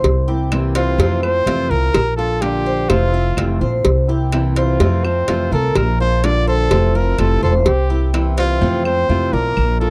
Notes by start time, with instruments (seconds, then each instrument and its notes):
Already playing: cuban tres C5
0.04 upright bass C2, muted nylon-string guitar stroke, cowbell
0.28 nylon-string guitar A#3 C4 E4, cuban tres G4
0.51 nylon-string guitar C3 E3 A#3 C4 E4, cowbell, claves
0.75 cuban tres C4, trumpet F4, cowbell
0.98 upright bass F2, nylon-string guitar C3 E3 A3 C4 F4, cuban tres C4, cowbell
1.23 nylon-string guitar A3 C4 F4, trumpet C5, claves
1.46 upright bass F2, nylon-string guitar C3 E3 A3 C4 F4, cuban tres F4, cowbell
1.70 upright bass C2, nylon-string guitar A3 C4 F4, trumpet A#4, cuban tres A#4
1.94 upright bass A#1, muted nylon-string guitar stroke, cowbell, claves
2.17 nylon-string guitar A#3 D4 F4, cuban tres F4, trumpet A4
2.41 nylon-string guitar D3 A#3 D4 F4, trumpet G4, cowbell
2.66 cuban tres C5
2.89 upright bass F1, nylon-string guitar C3 E3 A3 C4 F4, trumpet F4, cowbell, claves
3.13 nylon-string guitar A3 C4 F4, cuban tres E5
3.37 upright bass F1, nylon-string guitar C3 E3 A3 C4 F4, cowbell, claves
3.61 upright bass A#1, nylon-string guitar A3 C4 F4, cuban tres C5
3.85 upright bass C2, muted nylon-string guitar stroke, cowbell
4.08 nylon-string guitar A#3 C4 E4, cuban tres G4
4.32 nylon-string guitar C3 E3 A#3 C4 E4, cowbell, claves
4.56 cuban tres C4, trumpet F4, cowbell
4.80 upright bass F2, nylon-string guitar C3 E3 A3 C4 F4, cuban tres C4, cowbell
5.04 nylon-string guitar A3 C4 F4, trumpet C5, claves
5.28 upright bass F2, nylon-string guitar C3 E3 A3 C4 F4, cuban tres F4, cowbell
5.52 upright bass C2, nylon-string guitar A3 C4 F4, trumpet A4, cuban tres A#4
5.75 upright bass A#1, trumpet A#4, muted nylon-string guitar stroke, cowbell, claves
6.00 nylon-string guitar A#3 D4 F4, cuban tres F4, trumpet C5
6.23 nylon-string guitar D3 A#3 D4 F4, trumpet D5, cowbell
6.47 trumpet A4, cuban tres C5
6.71 upright bass F1, nylon-string guitar C3 E3 A3 C4 F4, cowbell, claves
6.95 nylon-string guitar A3 C4 F4, cuban tres E4, trumpet A#4
7.18 upright bass F1, nylon-string guitar C3 E3 A3 C4 F4, trumpet A4, cowbell, claves
7.42 upright bass E1, nylon-string guitar A3 C4 F4, trumpet A4, cuban tres C5
7.66 upright bass C2, trumpet G4, muted nylon-string guitar stroke, cowbell
7.90 nylon-string guitar A#3 C4 E4, cuban tres G4
8.13 nylon-string guitar C3 E3 A#3 C4 E4, cowbell, claves
8.37 cuban tres C4, trumpet F4, cowbell
8.61 upright bass F2, nylon-string guitar C3 E3 A3 C4 F4, cuban tres C4
8.85 nylon-string guitar A3 C4 F4, trumpet C5, claves
9.09 upright bass F2, nylon-string guitar C3 E3 A3 C4 F4, cuban tres F4
9.33 upright bass B1, nylon-string guitar A3 C4 F4, trumpet A#4, cuban tres D5
9.57 upright bass A#1, muted nylon-string guitar stroke, claves
9.80 nylon-string guitar A#3 D4 F4, trumpet A4, cuban tres A#4